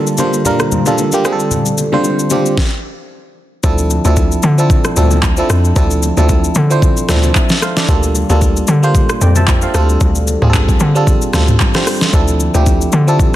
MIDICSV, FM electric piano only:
0, 0, Header, 1, 2, 480
1, 0, Start_track
1, 0, Key_signature, -1, "minor"
1, 0, Tempo, 530973
1, 1369, Time_signature, 4, 2, 24, 8
1, 12075, End_track
2, 0, Start_track
2, 0, Title_t, "FM electric piano"
2, 0, Program_c, 0, 5
2, 0, Control_c, 0, 64, 127
2, 0, Note_on_c, 0, 50, 82
2, 0, Note_on_c, 0, 55, 78
2, 0, Note_on_c, 0, 58, 76
2, 0, Note_on_c, 0, 62, 76
2, 0, Note_on_c, 0, 65, 77
2, 0, Note_on_c, 0, 69, 92
2, 102, Note_off_c, 0, 50, 0
2, 103, Note_off_c, 0, 55, 0
2, 105, Note_off_c, 0, 58, 0
2, 106, Note_off_c, 0, 62, 0
2, 108, Note_off_c, 0, 65, 0
2, 109, Note_off_c, 0, 69, 0
2, 164, Note_on_c, 0, 50, 80
2, 167, Note_on_c, 0, 55, 75
2, 170, Note_on_c, 0, 58, 75
2, 172, Note_on_c, 0, 62, 70
2, 176, Note_on_c, 0, 65, 75
2, 178, Note_on_c, 0, 72, 83
2, 363, Note_off_c, 0, 50, 0
2, 364, Note_off_c, 0, 55, 0
2, 366, Note_off_c, 0, 58, 0
2, 367, Note_off_c, 0, 62, 0
2, 369, Note_off_c, 0, 65, 0
2, 370, Note_off_c, 0, 72, 0
2, 405, Note_on_c, 0, 50, 83
2, 408, Note_on_c, 0, 55, 77
2, 411, Note_on_c, 0, 58, 79
2, 414, Note_on_c, 0, 62, 77
2, 417, Note_on_c, 0, 65, 78
2, 419, Note_on_c, 0, 70, 91
2, 700, Note_off_c, 0, 50, 0
2, 701, Note_off_c, 0, 55, 0
2, 702, Note_off_c, 0, 58, 0
2, 704, Note_off_c, 0, 62, 0
2, 705, Note_off_c, 0, 65, 0
2, 707, Note_off_c, 0, 70, 0
2, 777, Note_on_c, 0, 50, 83
2, 779, Note_on_c, 0, 55, 77
2, 782, Note_on_c, 0, 58, 75
2, 785, Note_on_c, 0, 62, 73
2, 788, Note_on_c, 0, 65, 77
2, 791, Note_on_c, 0, 69, 89
2, 966, Note_off_c, 0, 50, 0
2, 967, Note_off_c, 0, 55, 0
2, 969, Note_off_c, 0, 58, 0
2, 970, Note_off_c, 0, 62, 0
2, 971, Note_off_c, 0, 65, 0
2, 973, Note_off_c, 0, 69, 0
2, 1017, Note_on_c, 0, 50, 80
2, 1020, Note_on_c, 0, 55, 77
2, 1022, Note_on_c, 0, 58, 76
2, 1025, Note_on_c, 0, 62, 75
2, 1028, Note_on_c, 0, 65, 74
2, 1031, Note_on_c, 0, 67, 93
2, 1115, Note_off_c, 0, 50, 0
2, 1117, Note_off_c, 0, 55, 0
2, 1123, Note_off_c, 0, 62, 0
2, 1126, Note_off_c, 0, 65, 0
2, 1126, Note_on_c, 0, 50, 89
2, 1128, Note_on_c, 0, 55, 82
2, 1129, Note_off_c, 0, 58, 0
2, 1131, Note_on_c, 0, 60, 81
2, 1134, Note_off_c, 0, 67, 0
2, 1134, Note_on_c, 0, 62, 81
2, 1137, Note_on_c, 0, 65, 77
2, 1140, Control_c, 0, 64, 0
2, 1140, Note_on_c, 0, 68, 76
2, 1197, Note_off_c, 0, 68, 0
2, 1197, Note_on_c, 0, 69, 98
2, 1300, Control_c, 0, 64, 127
2, 1607, Note_off_c, 0, 50, 0
2, 1608, Note_off_c, 0, 55, 0
2, 1610, Note_off_c, 0, 60, 0
2, 1611, Note_off_c, 0, 62, 0
2, 1613, Note_off_c, 0, 65, 0
2, 1643, Note_off_c, 0, 69, 0
2, 1736, Note_on_c, 0, 50, 81
2, 1739, Note_on_c, 0, 55, 79
2, 1743, Note_on_c, 0, 60, 79
2, 1745, Note_on_c, 0, 62, 76
2, 1748, Note_on_c, 0, 65, 76
2, 1751, Note_on_c, 0, 72, 96
2, 2021, Note_off_c, 0, 50, 0
2, 2023, Note_off_c, 0, 55, 0
2, 2025, Note_off_c, 0, 60, 0
2, 2026, Note_off_c, 0, 62, 0
2, 2027, Note_off_c, 0, 65, 0
2, 2029, Note_off_c, 0, 72, 0
2, 2086, Note_on_c, 0, 50, 80
2, 2088, Note_on_c, 0, 55, 73
2, 2092, Note_on_c, 0, 60, 74
2, 2094, Note_on_c, 0, 62, 72
2, 2097, Note_on_c, 0, 65, 73
2, 2100, Note_on_c, 0, 67, 88
2, 2284, Note_off_c, 0, 50, 0
2, 2285, Note_off_c, 0, 55, 0
2, 2287, Note_off_c, 0, 60, 0
2, 2288, Note_off_c, 0, 62, 0
2, 2289, Note_off_c, 0, 65, 0
2, 2291, Note_off_c, 0, 67, 0
2, 2340, Control_c, 0, 64, 0
2, 3287, Note_on_c, 0, 53, 86
2, 3290, Note_on_c, 0, 60, 77
2, 3294, Note_on_c, 0, 62, 76
2, 3297, Note_on_c, 0, 64, 79
2, 3300, Note_on_c, 0, 69, 94
2, 3443, Control_c, 0, 64, 127
2, 3580, Note_off_c, 0, 53, 0
2, 3582, Note_off_c, 0, 60, 0
2, 3584, Note_off_c, 0, 62, 0
2, 3586, Note_off_c, 0, 64, 0
2, 3587, Note_off_c, 0, 69, 0
2, 3658, Note_on_c, 0, 53, 87
2, 3662, Note_on_c, 0, 60, 77
2, 3666, Note_on_c, 0, 62, 79
2, 3669, Note_on_c, 0, 64, 82
2, 3672, Note_on_c, 0, 69, 96
2, 4033, Note_off_c, 0, 53, 0
2, 4035, Note_off_c, 0, 60, 0
2, 4037, Note_off_c, 0, 62, 0
2, 4039, Note_off_c, 0, 64, 0
2, 4041, Note_off_c, 0, 69, 0
2, 4140, Note_on_c, 0, 53, 84
2, 4143, Note_on_c, 0, 60, 79
2, 4147, Note_on_c, 0, 62, 78
2, 4150, Note_on_c, 0, 64, 77
2, 4154, Note_on_c, 0, 69, 94
2, 4423, Note_off_c, 0, 53, 0
2, 4425, Note_off_c, 0, 60, 0
2, 4427, Note_off_c, 0, 62, 0
2, 4429, Note_off_c, 0, 64, 0
2, 4431, Note_off_c, 0, 69, 0
2, 4487, Note_on_c, 0, 53, 81
2, 4491, Note_on_c, 0, 60, 77
2, 4494, Note_on_c, 0, 62, 74
2, 4498, Note_on_c, 0, 64, 75
2, 4501, Note_on_c, 0, 69, 94
2, 4781, Note_off_c, 0, 53, 0
2, 4783, Note_off_c, 0, 60, 0
2, 4784, Note_off_c, 0, 62, 0
2, 4786, Note_off_c, 0, 64, 0
2, 4788, Note_off_c, 0, 69, 0
2, 4860, Note_on_c, 0, 53, 87
2, 4863, Note_on_c, 0, 60, 79
2, 4867, Note_on_c, 0, 62, 81
2, 4870, Note_on_c, 0, 64, 79
2, 4874, Note_on_c, 0, 69, 95
2, 5143, Note_off_c, 0, 53, 0
2, 5145, Note_off_c, 0, 60, 0
2, 5147, Note_off_c, 0, 62, 0
2, 5149, Note_off_c, 0, 64, 0
2, 5151, Note_off_c, 0, 69, 0
2, 5207, Note_on_c, 0, 53, 82
2, 5211, Note_on_c, 0, 60, 77
2, 5215, Note_on_c, 0, 62, 77
2, 5218, Note_on_c, 0, 64, 78
2, 5221, Note_on_c, 0, 69, 94
2, 5500, Note_off_c, 0, 53, 0
2, 5502, Note_off_c, 0, 60, 0
2, 5504, Note_off_c, 0, 62, 0
2, 5506, Note_off_c, 0, 64, 0
2, 5508, Note_off_c, 0, 69, 0
2, 5579, Note_on_c, 0, 53, 92
2, 5582, Note_on_c, 0, 60, 81
2, 5586, Note_on_c, 0, 62, 80
2, 5590, Note_on_c, 0, 64, 80
2, 5593, Note_on_c, 0, 69, 98
2, 5954, Note_off_c, 0, 53, 0
2, 5956, Note_off_c, 0, 60, 0
2, 5958, Note_off_c, 0, 62, 0
2, 5960, Note_off_c, 0, 64, 0
2, 5961, Note_off_c, 0, 69, 0
2, 6058, Note_on_c, 0, 53, 83
2, 6061, Note_on_c, 0, 60, 78
2, 6065, Note_on_c, 0, 62, 79
2, 6069, Note_on_c, 0, 64, 81
2, 6072, Note_on_c, 0, 72, 92
2, 6342, Note_off_c, 0, 53, 0
2, 6344, Note_off_c, 0, 60, 0
2, 6346, Note_off_c, 0, 62, 0
2, 6348, Note_off_c, 0, 64, 0
2, 6349, Note_off_c, 0, 72, 0
2, 6406, Note_on_c, 0, 53, 88
2, 6410, Note_on_c, 0, 60, 80
2, 6413, Note_on_c, 0, 62, 80
2, 6417, Note_on_c, 0, 64, 76
2, 6420, Note_on_c, 0, 69, 93
2, 6653, Note_on_c, 0, 81, 65
2, 6654, Note_off_c, 0, 69, 0
2, 6658, Note_on_c, 0, 76, 57
2, 6700, Note_off_c, 0, 53, 0
2, 6702, Note_off_c, 0, 60, 0
2, 6704, Note_off_c, 0, 62, 0
2, 6705, Note_off_c, 0, 64, 0
2, 6879, Note_off_c, 0, 81, 0
2, 6882, Note_off_c, 0, 76, 0
2, 6893, Note_on_c, 0, 77, 78
2, 6899, Note_on_c, 0, 72, 66
2, 7016, Note_off_c, 0, 77, 0
2, 7019, Note_off_c, 0, 72, 0
2, 7025, Note_on_c, 0, 74, 68
2, 7031, Note_on_c, 0, 69, 57
2, 7126, Note_on_c, 0, 55, 86
2, 7129, Note_off_c, 0, 69, 0
2, 7129, Note_on_c, 0, 58, 78
2, 7133, Note_on_c, 0, 62, 79
2, 7137, Note_on_c, 0, 65, 78
2, 7140, Note_on_c, 0, 69, 92
2, 7142, Control_c, 0, 64, 0
2, 7251, Note_off_c, 0, 74, 0
2, 7312, Control_c, 0, 64, 127
2, 7420, Note_off_c, 0, 55, 0
2, 7422, Note_off_c, 0, 58, 0
2, 7423, Note_off_c, 0, 62, 0
2, 7425, Note_off_c, 0, 65, 0
2, 7427, Note_off_c, 0, 69, 0
2, 7499, Note_on_c, 0, 55, 91
2, 7502, Note_on_c, 0, 58, 83
2, 7507, Note_on_c, 0, 62, 82
2, 7510, Note_on_c, 0, 65, 81
2, 7514, Note_on_c, 0, 69, 96
2, 7874, Note_off_c, 0, 55, 0
2, 7876, Note_off_c, 0, 58, 0
2, 7878, Note_off_c, 0, 62, 0
2, 7880, Note_off_c, 0, 65, 0
2, 7882, Note_off_c, 0, 69, 0
2, 7979, Note_on_c, 0, 55, 83
2, 7982, Note_on_c, 0, 58, 75
2, 7985, Note_on_c, 0, 62, 79
2, 7990, Note_on_c, 0, 65, 77
2, 7993, Note_on_c, 0, 72, 94
2, 8263, Note_off_c, 0, 55, 0
2, 8264, Note_off_c, 0, 58, 0
2, 8266, Note_off_c, 0, 62, 0
2, 8268, Note_off_c, 0, 65, 0
2, 8270, Note_off_c, 0, 72, 0
2, 8333, Note_on_c, 0, 79, 68
2, 8338, Note_on_c, 0, 74, 56
2, 8456, Note_off_c, 0, 79, 0
2, 8459, Note_off_c, 0, 74, 0
2, 8466, Note_on_c, 0, 81, 70
2, 8472, Note_on_c, 0, 76, 61
2, 8691, Note_off_c, 0, 81, 0
2, 8694, Note_off_c, 0, 76, 0
2, 8704, Note_on_c, 0, 77, 66
2, 8709, Note_on_c, 0, 72, 56
2, 8806, Note_on_c, 0, 55, 92
2, 8810, Note_on_c, 0, 60, 81
2, 8813, Note_on_c, 0, 62, 85
2, 8817, Note_on_c, 0, 65, 87
2, 8820, Control_c, 0, 64, 0
2, 8820, Note_on_c, 0, 69, 102
2, 8930, Note_off_c, 0, 77, 0
2, 8933, Note_off_c, 0, 72, 0
2, 8959, Control_c, 0, 64, 127
2, 9287, Note_off_c, 0, 55, 0
2, 9289, Note_off_c, 0, 60, 0
2, 9291, Note_off_c, 0, 62, 0
2, 9293, Note_off_c, 0, 65, 0
2, 9294, Note_off_c, 0, 69, 0
2, 9418, Note_on_c, 0, 55, 87
2, 9421, Note_on_c, 0, 60, 81
2, 9425, Note_on_c, 0, 62, 81
2, 9429, Note_on_c, 0, 65, 83
2, 9432, Note_on_c, 0, 68, 77
2, 9478, Note_off_c, 0, 68, 0
2, 9490, Note_on_c, 0, 69, 97
2, 9794, Note_off_c, 0, 55, 0
2, 9795, Note_off_c, 0, 60, 0
2, 9797, Note_off_c, 0, 62, 0
2, 9799, Note_off_c, 0, 65, 0
2, 9829, Note_off_c, 0, 69, 0
2, 9899, Note_on_c, 0, 55, 88
2, 9903, Note_on_c, 0, 60, 80
2, 9907, Note_on_c, 0, 62, 77
2, 9910, Note_on_c, 0, 65, 81
2, 9914, Note_on_c, 0, 69, 96
2, 10183, Note_off_c, 0, 55, 0
2, 10185, Note_off_c, 0, 60, 0
2, 10187, Note_off_c, 0, 62, 0
2, 10189, Note_off_c, 0, 65, 0
2, 10190, Note_off_c, 0, 69, 0
2, 10248, Note_on_c, 0, 55, 81
2, 10250, Note_on_c, 0, 60, 77
2, 10254, Note_on_c, 0, 62, 74
2, 10258, Note_on_c, 0, 65, 80
2, 10261, Note_on_c, 0, 69, 93
2, 10541, Note_off_c, 0, 55, 0
2, 10542, Note_off_c, 0, 60, 0
2, 10544, Note_off_c, 0, 62, 0
2, 10546, Note_off_c, 0, 65, 0
2, 10548, Note_off_c, 0, 69, 0
2, 10619, Note_on_c, 0, 55, 86
2, 10622, Note_on_c, 0, 60, 82
2, 10626, Note_on_c, 0, 62, 80
2, 10630, Note_on_c, 0, 65, 76
2, 10633, Note_on_c, 0, 72, 94
2, 10903, Note_off_c, 0, 55, 0
2, 10905, Note_off_c, 0, 60, 0
2, 10906, Note_off_c, 0, 62, 0
2, 10908, Note_off_c, 0, 65, 0
2, 10910, Note_off_c, 0, 72, 0
2, 10966, Note_on_c, 0, 53, 83
2, 10969, Note_on_c, 0, 60, 81
2, 10973, Note_on_c, 0, 62, 78
2, 10976, Note_on_c, 0, 64, 77
2, 10980, Note_on_c, 0, 69, 95
2, 10981, Control_c, 0, 64, 0
2, 11126, Control_c, 0, 64, 127
2, 11260, Note_off_c, 0, 53, 0
2, 11261, Note_off_c, 0, 60, 0
2, 11263, Note_off_c, 0, 62, 0
2, 11265, Note_off_c, 0, 64, 0
2, 11267, Note_off_c, 0, 69, 0
2, 11338, Note_on_c, 0, 53, 86
2, 11342, Note_on_c, 0, 60, 79
2, 11345, Note_on_c, 0, 62, 80
2, 11348, Note_on_c, 0, 64, 81
2, 11352, Note_on_c, 0, 67, 93
2, 11714, Note_off_c, 0, 53, 0
2, 11715, Note_off_c, 0, 60, 0
2, 11717, Note_off_c, 0, 62, 0
2, 11719, Note_off_c, 0, 64, 0
2, 11721, Note_off_c, 0, 67, 0
2, 11818, Note_on_c, 0, 53, 86
2, 11821, Note_on_c, 0, 60, 80
2, 11825, Note_on_c, 0, 62, 80
2, 11828, Note_on_c, 0, 64, 81
2, 11832, Note_on_c, 0, 69, 95
2, 12075, Note_off_c, 0, 53, 0
2, 12075, Note_off_c, 0, 60, 0
2, 12075, Note_off_c, 0, 62, 0
2, 12075, Note_off_c, 0, 64, 0
2, 12075, Note_off_c, 0, 69, 0
2, 12075, End_track
0, 0, End_of_file